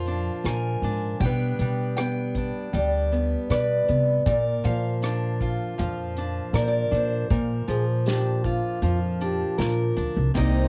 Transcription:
0.00 0.28 F2 medium
0.00 1.16 A#2 medium
0.00 1.21 F3 medium
0.00 1.21 F4 soft
0.00 0.44 A#4 soft
0.00 0.45 F5 medium
0.06 0.84 D4 soft
0.06 closed hi-hat soft
0.44 0.75 A#2 medium
0.44 1.17 A#4 medium
0.44 1.20 G#5 medium
0.44 cross-stick medium
0.44 closed hi-hat medium
0.82 1.13 G#2 medium
0.82 1.24 D4 medium
0.82 closed hi-hat soft
1.20 1.51 B2 medium
1.20 1.60 G3 soft
1.20 1.96 G5 medium
1.20 kick medium
1.20 closed hi-hat medium
1.25 1.98 B3 soft
1.25 2.37 D4 medium
1.25 3.49 B4 medium
1.59 2.49 B2 medium
1.59 2.72 G3 medium
1.59 closed hi-hat soft
1.96 3.11 B3 soft
1.96 2.74 G5 medium
1.96 cross-stick medium
1.96 closed hi-hat medium
2.35 5.03 D4 soft
2.35 kick medium
2.35 closed hi-hat soft
2.73 3.34 D2 medium
2.73 4.21 G3 medium
2.73 3.49 D5 medium
2.73 closed hi-hat medium
3.12 3.87 B3 soft
3.12 closed hi-hat soft
3.50 3.80 B2 medium
3.50 4.22 B4 medium
3.50 4.03 D5 medium
3.50 cross-stick medium
3.50 closed hi-hat medium
3.88 4.19 C3 medium
3.88 4.22 B3 soft
3.88 closed hi-hat soft
4.26 7.26 A#2 medium
4.26 4.56 A#2 medium
4.26 6.54 A#4 medium
4.26 4.64 D5 medium
4.26 kick medium
4.26 closed hi-hat medium
4.64 5.54 A#2 medium
4.64 5.78 F3 medium
4.64 5.78 F5 medium
4.64 closed hi-hat soft
5.02 6.17 D4 medium
5.02 cross-stick medium
5.02 closed hi-hat medium
5.41 7.27 F4 soft
5.41 kick medium
5.41 closed hi-hat soft
5.78 6.39 F2 medium
5.78 7.67 F3 medium
5.78 6.53 F5 medium
5.78 closed hi-hat medium
6.16 6.90 D4 soft
6.16 closed hi-hat soft
6.53 6.84 A#2 medium
6.53 7.30 A#4 medium
6.53 6.61 D5 medium
6.53 cross-stick medium
6.53 closed hi-hat medium
6.62 6.69 C5 medium
6.68 6.93 D5 medium
6.91 7.22 A#2 medium
6.91 7.26 D4 medium
6.91 9.56 C5 medium
6.91 closed hi-hat soft
7.30 7.61 A#2 medium
7.30 10.31 A#2 medium
7.30 9.57 A#4 medium
7.30 kick medium
7.30 closed hi-hat medium
7.68 8.58 A#2 medium
7.68 8.82 F3 medium
7.68 7.85 G#4 medium
7.68 closed hi-hat soft
8.06 9.20 D4 medium
8.06 8.45 G4 medium
8.06 snare medium
8.06 closed hi-hat medium
8.44 8.83 F4 medium
8.44 10.31 F4 medium
8.44 kick medium
8.44 closed hi-hat soft
8.82 9.43 F2 medium
8.82 10.35 F3 medium
8.82 8.99 F4 medium
8.82 closed hi-hat medium
9.21 9.95 D4 medium
9.21 9.61 G4 medium
9.21 closed hi-hat soft
9.58 9.89 A#2 medium
9.58 10.36 F4 medium
9.58 10.31 A#4 medium
9.58 snare medium
9.58 closed hi-hat medium
9.97 10.15 D2 medium
9.97 10.31 D4 medium
9.97 closed hi-hat soft
10.17 10.34 C2 medium
10.34 10.65 C2 medium
10.34 10.68 C3 medium
10.34 10.68 G3 medium
10.34 10.68 A#3 medium
10.34 10.68 D#4 medium
10.34 10.68 A#4 medium
10.34 10.68 C5 medium
10.34 10.68 D#5 loud
10.34 kick medium
10.34 ride medium

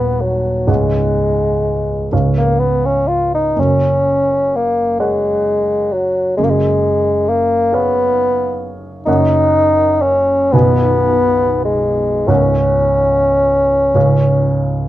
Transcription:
0.00 0.64 D#1 soft
0.00 0.64 D#2 soft
0.00 0.22 B3 medium
0.00 0.64 F#4 soft
0.00 0.65 B4 soft
0.00 0.65 F#5 soft
0.21 0.69 F#3 soft
0.67 2.08 C#1 soft
0.67 2.07 C#2 soft
0.67 2.12 G#3 medium
0.67 2.07 G#4 soft
0.67 2.08 C#5 soft
0.67 2.08 F#5 soft
2.12 3.54 C#1 soft
2.12 3.53 C#2 soft
2.12 3.53 G#4 soft
2.12 3.54 C#5 soft
2.12 3.54 F5 soft
2.38 2.61 A#3 soft
2.59 2.87 B3 medium
2.86 3.10 C#4 soft
3.08 3.33 F4 soft
3.35 3.61 D#4 medium
3.56 6.34 F#1 soft
3.56 6.34 F#2 soft
3.56 4.58 C#4 medium
4.56 5.00 A#3 medium
4.99 5.94 G#3 medium
4.99 6.34 A#4 soft
4.99 6.34 C#5 soft
4.99 6.35 F#5 soft
5.92 6.36 F#3 medium
6.37 9.03 F#1 soft
6.37 9.03 F#2 soft
6.37 6.46 G#3 medium
6.45 6.52 A#3 medium
6.51 7.31 G#3 medium
7.29 7.76 A#3 medium
7.72 8.80 B3 medium
7.72 9.03 G#4 soft
7.72 9.03 C#5 soft
7.72 9.03 F5 soft
9.06 10.49 F#1 soft
9.06 10.49 F#2 medium
9.06 10.04 D#4 medium
9.06 10.49 A#4 soft
9.06 10.49 C#5 soft
9.06 10.49 F#5 soft
10.02 10.53 C#4 medium
10.52 12.24 B0 soft
10.52 12.24 B1 medium
10.52 11.64 B3 medium
10.52 12.25 B4 soft
10.52 12.25 D#5 soft
10.52 12.25 G#5 soft
11.65 12.29 G#3 medium
12.28 13.91 C#1 soft
12.28 13.91 C#2 soft
12.28 14.89 C#4 medium
12.28 13.91 A#4 soft
12.28 13.91 C#5 soft
12.28 13.91 F#5 soft
13.95 14.89 C#1 soft
13.95 14.89 C#2 soft
13.95 14.89 G#4 soft
13.95 14.89 C#5 soft
13.95 14.89 F5 soft

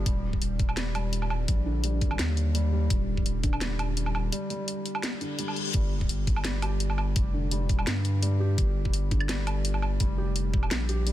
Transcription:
0.06 0.40 D#1 loud
0.06 0.23 G3 medium
0.06 kick loud
0.06 closed hi-hat medium
0.33 kick medium
0.41 1.47 D#1 medium
0.41 closed hi-hat medium
0.59 kick loud
0.59 closed hi-hat soft
0.69 low woodblock soft
0.77 0.93 G3 medium
0.77 snare loud
0.77 closed hi-hat medium
0.95 1.12 G3 medium
0.95 closed hi-hat soft
0.95 low woodblock medium
1.13 closed hi-hat medium
1.22 low woodblock soft
1.30 low woodblock soft
1.48 1.97 A#1 medium
1.48 kick loud
1.48 closed hi-hat medium
1.66 1.82 D3 medium
1.84 2.01 G3 medium
1.84 closed hi-hat medium
1.97 2.18 A1 medium
2.01 kick loud
2.01 closed hi-hat soft
2.11 low woodblock soft
2.19 2.89 D#2 loud
2.19 snare loud
2.19 closed hi-hat medium
2.37 closed hi-hat soft
2.55 2.71 G3 medium
2.55 closed hi-hat medium
2.72 2.89 G3 medium
2.90 3.24 D#1 loud
2.90 kick loud
2.90 closed hi-hat medium
3.17 kick medium
3.26 4.31 D#1 loud
3.26 closed hi-hat medium
3.43 3.60 D3 medium
3.43 kick medium
3.43 closed hi-hat soft
3.53 low woodblock medium
3.61 3.78 G3 medium
3.61 snare loud
3.61 closed hi-hat medium
3.79 closed hi-hat soft
3.79 low woodblock medium
3.97 closed hi-hat medium
4.06 low woodblock soft
4.15 low woodblock medium
4.32 4.48 G3 medium
4.32 closed hi-hat medium
4.50 4.67 G3 medium
4.50 closed hi-hat soft
4.68 closed hi-hat medium
4.86 closed hi-hat soft
4.95 low woodblock medium
5.03 snare loud
5.03 closed hi-hat medium
5.03 reverse cymbal medium
5.21 5.37 D3 medium
5.21 closed hi-hat soft
5.39 5.56 G3 medium
5.39 closed hi-hat medium
5.48 low woodblock soft
5.56 closed hi-hat soft
5.74 6.08 G1 medium
5.74 5.91 G3 medium
5.74 kick loud
5.74 closed hi-hat medium
6.01 kick medium
6.09 7.15 G1 medium
6.09 closed hi-hat medium
6.27 kick loud
6.27 closed hi-hat soft
6.36 low woodblock medium
6.45 6.62 G3 medium
6.45 snare loud
6.45 closed hi-hat medium
6.62 6.80 G4 medium
6.62 closed hi-hat soft
6.62 low woodblock medium
6.80 closed hi-hat medium
6.90 low woodblock soft
6.98 low woodblock medium
7.16 7.65 F1 medium
7.16 kick loud
7.16 closed hi-hat medium
7.34 7.50 D3 medium
7.51 7.69 G3 medium
7.51 closed hi-hat medium
7.65 7.86 E1 medium
7.69 kick loud
7.69 closed hi-hat soft
7.79 low woodblock medium
7.87 8.57 G2 medium
7.87 snare loud
7.87 closed hi-hat medium
8.05 closed hi-hat soft
8.22 8.40 G3 medium
8.22 closed hi-hat medium
8.40 8.57 G4 medium
8.58 8.92 G1 medium
8.58 kick loud
8.58 closed hi-hat medium
8.85 kick medium
8.93 9.99 G1 medium
8.93 closed hi-hat medium
9.11 9.27 D3 medium
9.11 kick loud
9.11 closed hi-hat soft
9.20 low woodblock medium
9.29 9.46 G3 medium
9.29 snare loud
9.29 closed hi-hat medium
9.47 closed hi-hat soft
9.47 low woodblock medium
9.65 closed hi-hat medium
9.74 low woodblock soft
9.82 low woodblock soft
10.00 10.49 F1 loud
10.00 10.17 G3 medium
10.00 kick loud
10.00 closed hi-hat medium
10.18 10.35 G4 medium
10.36 closed hi-hat medium
10.49 10.70 E1 loud
10.54 kick loud
10.63 low woodblock soft
10.71 11.12 A#1 medium
10.71 snare loud
10.71 closed hi-hat medium
10.89 11.06 G4 medium
10.89 closed hi-hat soft
11.07 11.12 G3 medium
11.07 closed hi-hat medium

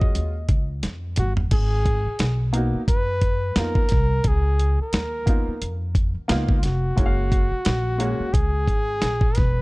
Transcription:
0.00 0.12 F2 medium
0.00 0.31 G#3 medium
0.00 0.32 C#4 medium
0.00 0.32 F4 medium
0.00 0.34 F#4 medium
0.00 0.84 D#5 loud
0.00 kick medium
0.15 0.48 D#2 medium
0.15 closed hi-hat medium
0.48 0.81 C#2 medium
0.48 kick medium
0.48 closed hi-hat medium
0.83 1.16 F2 medium
0.83 snare medium
0.83 closed hi-hat medium
1.16 1.50 G1 medium
1.16 1.34 F#4 medium
1.16 closed hi-hat medium
1.16 mid tom medium
1.37 floor tom medium
1.51 2.03 G#1 medium
1.51 2.51 G#4 loud
1.51 kick loud
1.51 closed hi-hat medium
1.51 crash medium
1.86 kick medium
1.86 closed hi-hat medium
2.06 muted upright bass stroke soft
2.19 2.71 B1 medium
2.19 snare loud
2.19 closed hi-hat medium
2.53 2.79 A#3 medium
2.53 2.80 B3 medium
2.53 2.80 D#4 medium
2.53 2.81 F#4 medium
2.53 closed hi-hat medium
2.73 muted upright bass stroke soft
2.88 3.53 F#2 medium
2.88 3.60 B4 loud
2.88 kick medium
2.88 closed hi-hat medium
3.21 kick medium
3.21 closed hi-hat medium
3.56 3.89 F2 medium
3.56 3.82 A#3 medium
3.56 3.82 B3 medium
3.56 3.83 D#4 medium
3.56 3.83 F4 medium
3.56 4.29 A#4 loud
3.56 snare loud
3.56 closed hi-hat medium
3.75 kick medium
3.89 4.24 C2 medium
3.89 kick medium
3.89 snare soft
3.89 closed hi-hat medium
4.24 4.76 C#2 loud
4.24 4.80 G#4 loud
4.24 kick loud
4.24 closed hi-hat loud
4.59 closed hi-hat medium
4.78 5.78 A#4 medium
4.78 muted upright bass stroke soft
4.93 5.44 D#2 medium
4.93 snare loud
4.93 closed hi-hat medium
5.26 5.52 A#3 medium
5.26 5.52 B3 medium
5.26 5.53 D#4 medium
5.26 5.54 F4 medium
5.26 kick medium
5.26 closed hi-hat medium
5.47 muted upright bass stroke soft
5.62 6.12 F2 medium
5.62 closed hi-hat medium
5.95 kick medium
5.95 closed hi-hat medium
6.15 muted upright bass stroke medium
6.28 6.62 C#2 medium
6.28 6.54 A#3 medium
6.28 6.55 B3 medium
6.28 6.55 D#4 medium
6.28 6.56 F4 loud
6.28 snare loud
6.28 closed hi-hat medium
6.49 kick medium
6.58 6.65 F4 medium
6.63 6.96 F1 medium
6.63 8.35 F#4 medium
6.63 snare soft
6.63 closed hi-hat medium
6.96 7.49 F#1 medium
6.96 7.46 G#3 medium
6.96 7.47 A#3 medium
6.96 7.48 C#4 medium
6.96 7.06 E4 medium
6.96 kick loud
6.96 closed hi-hat medium
7.06 7.51 F5 medium
7.32 kick medium
7.32 closed hi-hat medium
7.51 muted upright bass stroke soft
7.65 8.17 A#1 medium
7.65 snare loud
7.65 closed hi-hat medium
7.98 8.24 G#3 medium
7.98 8.25 A#3 medium
7.98 8.26 C#4 medium
7.98 8.26 F#4 medium
7.98 closed hi-hat medium
8.20 muted upright bass stroke soft
8.33 8.66 C#2 medium
8.33 9.37 G#4 loud
8.33 kick medium
8.33 closed hi-hat medium
8.67 9.00 G#1 medium
8.67 kick medium
8.67 closed hi-hat medium
9.02 9.35 A#1 medium
9.02 snare loud
9.02 closed hi-hat medium
9.21 kick medium
9.35 9.62 E1 medium
9.35 9.62 B4 loud
9.35 kick medium
9.35 snare soft
9.35 closed hi-hat medium

